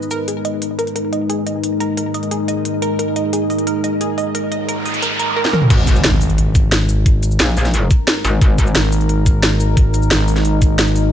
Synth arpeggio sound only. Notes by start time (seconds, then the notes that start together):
0.11 A#4
0.28 G#4
0.45 D#5
0.79 A#4
0.96 A#4
1.13 D#5
1.29 G#4
1.46 D#5
1.80 A#4
1.97 A#4
2.14 D#5
2.31 G#4
2.48 D#5
2.82 A#4
2.99 A#4
3.16 D#5
3.33 G#4
3.50 D#5
3.67 A#4
3.84 D#5
4.01 G#4
4.18 D#5
4.35 A#4
4.52 D#5
4.69 A#4
4.86 D#5
5.02 A#4
5.19 A#4
5.36 A#4
5.53 A#4